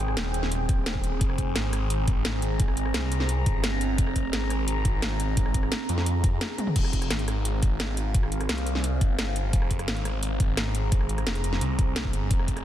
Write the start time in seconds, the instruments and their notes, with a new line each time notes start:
Already playing: detuned saw bass G#1, ambient pad C4 G#4 G5
0.08 cross-stick
0.17 detuned saw bass D#1, snare, closed hi-hat
0.34 closed hi-hat
0.43 snare
0.52 closed hi-hat
0.69 kick, closed hi-hat
0.86 snare, closed hi-hat
0.95 kick
1.04 closed hi-hat
1.21 detuned saw bass F1, ambient pad A#5, kick, closed hi-hat
1.30 cross-stick
1.38 kick, closed hi-hat
1.56 detuned saw bass G#1, snare, closed hi-hat
1.73 cross-stick, closed hi-hat
1.90 closed hi-hat
2.08 kick, closed hi-hat
2.25 snare, closed hi-hat
2.42 closed hi-hat
2.60 kick, closed hi-hat
2.68 cross-stick
2.77 closed hi-hat
2.86 cross-stick
2.94 detuned saw bass C2, snare, closed hi-hat
3.12 closed hi-hat
3.20 snare
3.29 closed hi-hat
3.46 detuned saw bass G1, kick, closed hi-hat
3.64 snare, closed hi-hat
3.81 closed hi-hat
3.98 detuned saw bass F1, kick, closed hi-hat
4.07 cross-stick
4.16 kick, closed hi-hat
4.33 detuned saw bass G#1, snare, closed hi-hat
4.50 cross-stick, closed hi-hat
4.68 closed hi-hat
4.85 kick, closed hi-hat
5.02 snare, closed hi-hat
5.20 closed hi-hat
5.37 kick, closed hi-hat
5.46 cross-stick
5.54 kick, closed hi-hat
5.63 cross-stick
5.72 snare, closed hi-hat
5.89 detuned saw bass F2, closed hi-hat
5.98 snare
6.06 closed hi-hat
6.24 kick, closed hi-hat
6.41 snare, closed hi-hat
6.58 closed hi-hat, high tom
6.67 mid tom
6.76 detuned saw bass F1, ambient pad C4 G#4 F5, kick, closed hi-hat, crash
6.85 cross-stick
6.93 kick, closed hi-hat
7.02 cross-stick, closed hi-hat
7.10 detuned saw bass G#1, snare, closed hi-hat
7.19 closed hi-hat
7.28 cross-stick, closed hi-hat
7.45 closed hi-hat
7.63 kick, closed hi-hat
7.80 snare, closed hi-hat
7.97 closed hi-hat
8.14 kick, closed hi-hat
8.23 cross-stick
8.32 closed hi-hat
8.41 cross-stick, closed hi-hat
8.49 detuned saw bass C2, snare, closed hi-hat
8.58 closed hi-hat
8.67 closed hi-hat
8.75 snare
8.84 closed hi-hat
9.01 detuned saw bass G1, kick, closed hi-hat
9.19 snare, closed hi-hat
9.36 closed hi-hat
9.53 detuned saw bass F1, ambient pad A#5, kick, closed hi-hat
9.62 cross-stick
9.71 kick, closed hi-hat
9.79 cross-stick, closed hi-hat
9.88 detuned saw bass G#1, snare, closed hi-hat
9.97 closed hi-hat
10.05 cross-stick, closed hi-hat
10.23 closed hi-hat
10.40 kick, closed hi-hat
10.57 snare, closed hi-hat
10.75 closed hi-hat
10.92 kick, closed hi-hat
11.01 cross-stick
11.09 closed hi-hat
11.18 cross-stick, closed hi-hat
11.27 detuned saw bass F1, snare, closed hi-hat
11.35 closed hi-hat
11.44 detuned saw bass F1, closed hi-hat
11.53 snare
11.61 detuned saw bass C2, closed hi-hat
11.79 kick, closed hi-hat
11.96 snare, closed hi-hat
12.05 kick
12.13 detuned saw bass G1, closed hi-hat
12.31 detuned saw bass F1, ambient pad F5, kick, closed hi-hat
12.39 cross-stick
12.48 kick, closed hi-hat
12.57 cross-stick, closed hi-hat